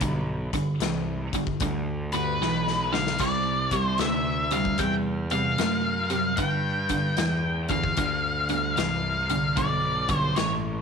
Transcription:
0.01 B1 G2 D3, kick, closed hi-hat
0.53 G2 D3, muted picked electric bass stroke, kick, closed hi-hat
0.80 C2 G2 E3, snare, closed hi-hat
1.33 G2 D3, muted picked electric bass stroke, kick, closed hi-hat
1.47 kick
1.60 D2 G2 D3, kick, closed hi-hat
2.12 G2 D3 B4, closed hi-hat
2.41 B1 G2 E3, snare
2.68 snare
2.92 G2 D3 F5, snare
3.07 snare
3.18 C2 C3 G3 D5, kick, closed hi-hat, splash
3.71 C3 G3, kick, closed hi-hat
3.80 C5
3.98 D2 C3 A3 E5, snare, closed hi-hat
4.51 C3 G3 F5, closed hi-hat
4.65 kick
4.78 E2 C3 G3 G5, kick, closed hi-hat
5.30 C3 G3 F5, closed hi-hat
5.58 F#2 C3 A3, snare, closed hi-hat
6.10 C3 G3, closed hi-hat
6.37 G2 D3 G5, kick, closed hi-hat
6.89 G2 D3, kick, closed hi-hat
7.17 E2 G2 E3, snare, closed hi-hat
7.68 G2 D3 F5, kick, closed hi-hat
7.84 kick
7.97 D2 G2 D3, kick, closed hi-hat
8.49 G2 D3, closed hi-hat
8.76 C2 G2 E3 F5, snare, closed hi-hat
9.29 G2 D3, closed hi-hat
9.57 B1 G2 D3 D5, kick, closed hi-hat
10.09 G2 D3, kick, closed hi-hat
10.17 C5
10.36 A1 G2 E3 C#5, snare, closed hi-hat

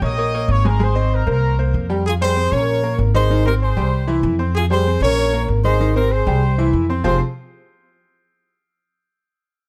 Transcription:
0.02 A#1 A#3 A#4 C#5 D#5 D#6
0.17 A#3 A#4 C#5
0.34 A#3 A#4 C#5
0.48 G#1 C#5 C#6
0.65 G#3 G#4 A#4 G#5 A#5
0.80 G#3 G#4 C5 G#5 C6
0.95 C4 C5 D#5
1.13 A#4 A#5
1.26 C2 A#3 A#4 C5 A#5
1.59 A#3 A#4 C5
1.74 F2
1.90 G3 G4 G5
2.07 F4 G#4
2.21 G3 G4 G#4 C5 G5
2.36 C4 C5 C6
2.52 A#1 C#4 A#4 C#5 C#6
2.83 A#3 A#4 A#5
2.99 G#1
3.14 D#3 D#4 G#4 C5 D#5
3.30 D#3 D#4 D#5
3.46 C4 G4 A#4 C5 C6
3.62 G#4 C5
3.77 C2 G3 G4 G5
4.07 E3 E4 E5
4.23 F2
4.39 C4 C5 C6
4.55 F4 G#4
4.71 G3 G4 G#4 C5 G5
4.86 C4 C5 C6
5.01 A#1 C#4 A#4 C#5 C#6
5.33 A#3 A#4 A#5
5.48 G#1
5.64 D#3 D#4 G#4 C5 D#5
5.80 D#3 D#4 D#5
5.96 C4 G4 A#4 C5 C6
6.12 G#4 C5
6.27 C2 G3 G4 G5
6.58 E3 E4 E5
6.73 F2
6.89 C4 C5 C6
7.04 F1 F3 C4 F4 G4 G#4 C5

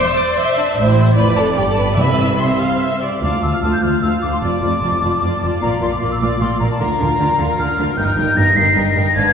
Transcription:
Already playing: C5
0.08 E5 E6
0.17 D5 D6
0.38 C5 E5 C6
0.57 D4 D5
0.76 A1 A2 E4 C5 E5
1.15 F1 F2 B4 D5 B5
1.37 A4 A5
1.56 G1 G2 G4 G5
1.67 A4 A5
1.78 B4 B5
1.97 C2 C3 B4 E5 B5
2.39 C5 E5 C6
2.61 F5
2.81 E5
3.02 D5
3.23 D2 F4 F5 A5 D6
3.43 D2 F4 F5 A5 E6
3.53 F6
3.62 D2 F4 F5 A5 F6
3.72 G6
3.82 D2 F4 F5 A5 F6
4.02 D2 F4 F5 A5 E6
4.22 D2 F4 F5 A5 D6
4.33 C6
4.41 F1 F2 F4 D5 A5 D6
4.62 F1 F2 F4 D5 A5
4.82 F1 F2 F4 D5 A5
5.02 F1 F2 F4 D5 A5
5.22 F1 F2 F4 D5 A5
5.41 F1 F2 F4 D5 A5
5.61 A#1 A#2 F4 D5 F5 A#5
5.81 A#1 A#2 F4 D5 F5 C6
5.92 D6
6.01 A#1 A#2 F4 D5 F5 D6
6.12 E6
6.20 A#1 A#2 F4 D5 F5 D6
6.40 A#1 A#2 F4 D5 F5 C6
6.60 A#1 A#2 F4 D5 F5 A#5
6.71 A5
6.79 D2 D3 F4 A#4 F5 A#5
6.98 D2 D3 F4 A#4 F5
7.18 D2 D3 F4 A#4 F5
7.38 D2 D3 F4 A#4 F5
7.57 D2 D3 F4 A#4 F5 F6
7.77 D2 D3 F4 A#4 F5
7.97 G1 G2 D#4 A#4 G5 G6
8.04 F6
8.11 G5 G6
8.17 G1 G2 D#4 A#4
8.35 G1 G2 D#4 A#4 G5 A#6
8.55 G1 G2 D#4 A#4 G5 C7
8.74 G1 G2 D#4 A#4 G5 A#6
8.94 G1 G2 D#4 A#4 G5
9.15 G#1 G#2 D4 B4 F5 G#6

